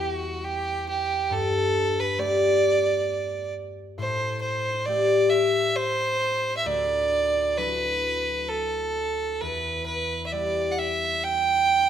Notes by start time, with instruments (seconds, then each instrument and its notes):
Already playing: harp E2 G3 B3 E4
0.00 fiddle F#4
0.44 fiddle G4
0.89 fiddle G4
1.30 harp G2, fiddle A4
2.00 fiddle B4
2.18 harp A3 B3 G4, fiddle D5
3.98 harp A2, fiddle C5
4.41 fiddle C5
4.85 harp A3 C4 G4, fiddle D5
5.29 fiddle E5
5.76 fiddle C5
6.57 fiddle E5
6.66 harp D2, fiddle D5
7.57 harp F#3 D4 E4, fiddle B4
8.49 fiddle A4
9.41 harp E2, fiddle B4
9.86 fiddle B4
10.26 fiddle E5
10.32 harp G3 B3 E4, fiddle D5
10.72 fiddle F#5
10.78 fiddle E5
11.23 fiddle G5